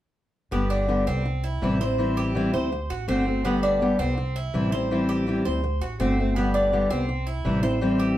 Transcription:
0.51 G1 D3 G3 B3 G4
0.70 D4
0.88 D3 G3 B3 G4
1.06 C2 G3 B3 C4 G4
1.25 muted steel-string acoustic guitar stroke
1.44 E4
1.62 A1 C3 E3 G3 C4 E4
1.80 G3 C4 E4 C5
1.98 E3 G3 C4 E4
2.17 G4
2.35 E3 G3 C4 E4
2.53 D2 G3 C4 E4 C5
2.72 muted steel-string acoustic guitar stroke
2.90 A1 F#4
3.08 G1 D3 A3 C4 F#4
3.26 A3 C4 F#4
3.44 D3 G3 B3 G4
3.63 D4
3.81 D3 G3 B3 G4
3.99 C2 G3 B3 C4 G4
4.17 muted steel-string acoustic guitar stroke
4.36 E4
4.54 A1 C3 E3 G3 C4 E4
4.72 G3 C4 E4 C5
4.91 E3 G3 C4 E4
5.09 G4
5.27 E3 G3 C4 E4
5.45 D2 G3 C4 E4 C5
5.63 muted steel-string acoustic guitar stroke
5.81 A1 F#4
6.00 G1 D3 A3 C4 F#4
6.18 A3 C4 F#4
6.36 D3 G3 B3 G4
6.54 D4
6.72 D3 G3 B3 G4
6.90 C2 G3 B3 C4 G4
7.09 muted steel-string acoustic guitar stroke
7.27 E4
7.45 A1 C3 E3 G3 C4 E4
7.63 G3 C4 E4 C5
7.81 E3 G3 C4 E4
7.99 G4

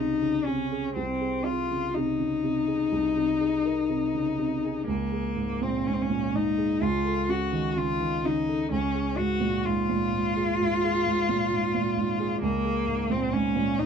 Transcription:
Already playing: C2 C3 C#3 D#4 G#4
0.22 C#3
0.45 C3 C#4
0.72 G#4
0.95 C2 C4
1.21 G#4
1.45 C3 F4
1.71 C#3
1.94 C3 D#4
2.20 C#3
2.44 C3
2.67 G#4
2.92 C2
3.17 C3
3.41 G#4
3.66 A#4
3.89 C3
4.15 C#3
4.39 C3
4.64 G#4
4.87 C#2 A#3
5.12 G#4
5.36 G#2
5.62 A#2 C4
5.86 G#2 C#4
5.94 C4
6.01 C#4
6.10 A#2
6.34 G#2 D#4
6.58 G#4
6.81 C#2 F4
7.05 A4
7.29 C#3 F#4
7.53 D#3
7.77 C#3 F4
8.01 D#3
8.25 C#3 D#4
8.48 A4
8.71 C#2 C#4
8.95 G#4
9.18 G#2 F#4
9.40 A#2
9.65 G#2 F4
9.89 A#2
10.13 G#2
10.36 G#4
10.60 G#2
10.84 G#4
11.06 G#2
11.29 A#2
11.52 G#2
11.74 A#2
11.97 G#2
12.20 G#4
12.42 C#2 A#3
12.65 G#4
12.87 G#2
13.10 A#2 C4
13.33 G#2 C#4
13.56 A#2
13.79 G#2 D#4

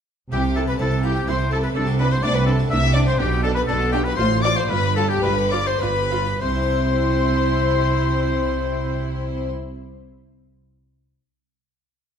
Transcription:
0.32 C2 C3 E4 G4 G5
0.44 G4
0.55 E4 A4 A5
0.68 G4 B4 B5
0.79 C2 C3 C4 E4 A4 A5
0.91 G4
1.03 E4 F4 G4 G5
1.16 G4
1.28 C2 C3 C4 E4 C5 C6
1.39 G4
1.51 E4 A4 A5
1.63 G4 B4 B5
1.75 C2 C3 D4 A4 A5
1.87 F#4
1.99 D4 B4 B5
2.11 F#4 C5 C6
2.23 C2 C3 A3 D4 D5 D6
2.35 F#4 B4 B5
2.46 D4 E4 A4 A5
2.59 F#4
2.70 C2 C3 A3 D4 E5 E6
2.83 F#4
2.94 D4 D5 D6
3.07 F#4 C5 C6
3.19 B1 B2 D4 G4 G5
3.32 G4
3.43 D4 A4 A5
3.55 G4 B4 B5
3.67 B1 B2 D4 A4 A5
3.81 G4
3.92 D4 F4 G4 G5
4.04 G4 B4 B5
4.16 A1 A2 F4 C5 C6
4.31 F4
4.42 C4 F4 D5 D6
4.56 F4 C5 C6
4.70 G1 G2 F4 B4 B5
4.83 G4
4.96 F4 A4 A5
5.09 G4 G5
5.23 G1 G2 D4 F4 B4 B5
5.38 G4
5.51 F4 D5 D6
5.67 G4 C5 C6
5.81 G1 G2 D4 F4 B4 B5
5.96 G4
6.11 F4
6.26 G4
6.42 C2 C3 E4 C5 C6
6.49 C4
6.56 E4
6.63 G4
6.70 E5

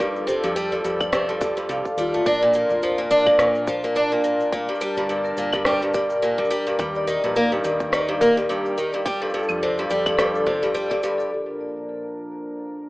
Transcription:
Already playing: G4
0.00 G2 F3 F4 A4 D5, kick, cabasa
0.16 cabasa
0.27 C3 A4, cabasa
0.43 F2 G2, cabasa
0.56 G3, cabasa
0.72 G2 D5, cabasa
0.84 F2 G2, cabasa
1.00 D5, kick, cabasa, claves
1.12 C3, kick, cross-stick, cabasa
1.29 G2 A4, cabasa
1.41 G2, kick, cabasa
1.57 G2, cabasa
1.69 C2 G2 F5, cabasa
1.85 kick, cabasa
1.97 D#2 G3 F4, cabasa
2.14 A2, cabasa
2.26 A#1 D4 A#4, kick, cabasa
2.41 A#2, cabasa
2.53 A#2, cabasa
2.69 F1 D5, cabasa
2.83 F3, cabasa
2.98 A#2 D5, cabasa
3.11 A#1 D4, cabasa
3.26 A#2 A#4, kick, claves
3.39 A#2, cross-stick, cabasa
3.55 cabasa
3.67 F3 D5, kick, cabasa
3.84 A#2, cabasa
3.95 D4 D5, cabasa
4.11 A#2, cabasa
4.24 A#2 A#4, cabasa
4.40 cabasa
4.52 A#2 G3 A5, kick, cabasa
4.68 G2 D5
4.75 cabasa
4.81 G3, cabasa
4.96 G1 G2 D5, cabasa
5.09 G2, cabasa
5.25 A#4, cabasa
5.37 G1 A#2, cabasa
5.52 G2, kick, cabasa, claves
5.65 G3 D5, kick, cross-stick
5.81 G2, cabasa
5.94 G2 D5, kick, cabasa
6.10 cabasa
6.22 A#2 A#4, cabasa
6.38 G2, kick
6.45 cabasa
6.50 G3, cabasa
6.66 G2 D5, cabasa
6.79 D#2 G2 D#3 D#4 G4, kick, cabasa
6.95 D5, cabasa
7.07 D#3, cabasa
7.24 A#1 G2 A#4, cabasa
7.36 A#3, cabasa
7.52 G2, cabasa
7.64 D#2 G2 D5, cabasa
7.80 kick, cabasa
7.92 D#3 D5, cross-stick, cabasa
8.08 G2
8.21 A#3 A#4, kick, cabasa
8.37 G2, cabasa
8.49 G2, cabasa
8.65 D5, cabasa
8.78 D#3, cabasa
8.93 G2 D5, cabasa
9.06 F3 G3 F4 A4, kick, cabasa
9.21 G2 A4, cabasa
9.24 cabasa
9.29 cabasa
9.34 G2, cabasa
9.39 cabasa
9.43 cabasa
9.49 F2, cabasa, claves
9.62 C3 D5
9.78 G2, cabasa
9.90 F2 G3 D5, cabasa
10.06 G2, kick, cabasa, claves
10.17 G2 A4, kick, cross-stick, cabasa
10.35 cabasa
10.46 C3, kick
10.62 G2 D5, cabasa
10.74 G3, cabasa
10.90 G2 D5, kick, cabasa
11.03 G2, cabasa
11.18 A4, cabasa
11.31 A#2 F3 D4 A#4

